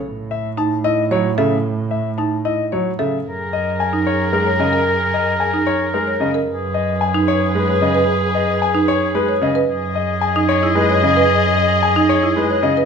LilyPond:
<<
  \new Staff \with { instrumentName = "Grand piano" } { \time 3/4 \key fis \dorian \tempo 4 = 112 r8 e''16 r16 a''16 r16 dis''16 r16 cis''16 r16 e''16 r16 | r8 e''16 r16 a''16 r16 dis''16 r16 cis''16 r16 e''16 r16 | \key fis \major r8 dis''16 r16 gis''16 r16 cis''16 r16 ais'16 r16 dis''16 r16 | r8 dis''16 r16 gis''16 r16 cis''16 r16 ais'16 r16 dis''16 r16 |
r8 dis''16 r16 gis''16 r16 cis''16 r16 b'16 r16 dis''16 r16 | r8 dis''16 r16 gis''16 r16 cis''16 r16 b'16 r16 dis''16 r16 | r8 dis''16 r16 gis''16 r16 cis''16 r16 b'16 r16 dis''16 r16 | r8 dis''16 r16 gis''16 r16 cis''16 r16 b'16 r16 dis''16 r16 | }
  \new Staff \with { instrumentName = "Marimba" } { \time 3/4 \key fis \dorian r4 dis'16 r16 e'16 r16 cis''16 r16 a'16 r16 | r4 dis'16 r16 e'16 r16 cis''16 r16 a'16 r16 | \key fis \major r4 r16 dis'16 r8. cis''16 r16 ais'16 | r4 r16 dis'16 r8. cis''16 r16 ais'16 |
r4 r16 dis'16 r8. cis''16 r16 b'16 | r4 r16 dis'16 r8. cis''16 r16 b'16 | r4 r16 dis'16 r16 e'16 r16 cis''16 r16 b'16 | r4 r16 dis'16 r16 e'16 r16 cis''16 r16 b'16 | }
  \new Staff \with { instrumentName = "Violin section" } { \time 3/4 \key fis \dorian r2. | r2. | \key fis \major <gis' ais'>2.~ | <gis' ais'>2~ <gis' ais'>8. r16 |
<gis' b'>2.~ | <gis' b'>2~ <gis' b'>8. r16 | <gis' dis''>2.~ | <gis' dis''>2~ <gis' dis''>8. r16 | }
  \new Staff \with { instrumentName = "Oboe" } { \time 3/4 \key fis \dorian r2. | r2. | \key fis \major ais'2.~ | ais'2~ ais'8. r16 |
gis'2.~ | gis'2~ gis'8. r16 | gis'2.~ | gis'2~ gis'8. r16 | }
  \new Staff \with { instrumentName = "Grand piano" } { \clef bass \time 3/4 \key fis \dorian r2 fis16 r16 cis16 r16 | r2 fis16 r16 cis16 r16 | \key fis \major r2 gis16 r16 cis16 r16 | r2 gis16 r16 cis16 r16 |
r2 gis16 r16 cis16 r16 | r2 gis16 r16 cis16 r16 | r2 gis16 r16 cis16 r16 | r2 gis16 r16 cis16 r16 | }
  \new Staff \with { instrumentName = "Double bass" } { \clef bass \time 3/4 \key fis \dorian a,2.~ | a,2. | \key fis \major fis,2.~ | fis,2. |
fis,2.~ | fis,2. | fis,2.~ | fis,2. | }
>>